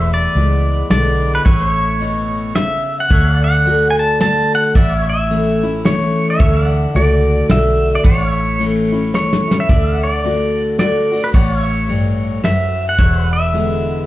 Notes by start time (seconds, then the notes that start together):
Already playing: E1 E2 C#5 E5
0.06 B4
0.14 D5
0.35 C#2 G#3 B3 E4, ride
0.90 B1 D3 G#3 B3 E4 D5, snare, ride
1.35 B4
1.45 A1 A2 B4 C#5 E5, kick, ride
1.71 C#5
2.00 B2, ride
2.55 C#3 E5, snare, ride
3.00 F#5
3.10 D2 D3 C#5 E5, kick, ride
3.31 D5
3.37 F#5
3.44 F#5
3.65 D3 A3 D4 F#4, ride
3.90 G#5
3.99 A5
4.19 D3 A3 D4 F#4 A5, snare, ride
4.55 F#5
4.75 A1 A2 D5 E5 F#5, kick, ride
4.96 C#5
5.02 E5
5.10 E5
5.30 E3 A3 C#4 E4, ride
5.63 C#4 E4
5.85 E3 A3 C#4 E4 C#5, snare, ride
6.30 E5
6.40 D2 D3 C#5 E5, kick, ride
6.60 D5
6.66 F#5
6.94 C#2 A3 D4 F#4 D5, ride
7.49 B1 D3 A3 D4 F#4 E5, snare, ride
7.95 D5
8.04 A1 A2 C#5 D5 F#5, kick, ride
8.24 C#5
8.30 E5
8.59 E3 A3 C#4 E4, ride
8.92 C#4 E4
9.14 E3 A3 C#4 E4 C#5, snare
9.33 snare
9.48 C#4 E4, snare
9.60 E5
9.69 D2 D3 D5 E5, kick, ride
9.95 F#5
10.04 D5
10.24 D3 A3 D4 F#4, ride
10.78 D3 A3 D4 F#4 D5, snare, ride
11.12 D4 F#4, ride
11.24 B4
11.34 A1 A2 C#5 D5 F#5, kick, ride
11.55 C#5
11.61 E5
11.89 G2, ride
12.44 F#2 E5, snare, ride
12.89 F#5
12.98 E1 E2 C#5 E5, kick, ride
13.24 B4
13.33 E5
13.53 D3 G#3 B3 E4, ride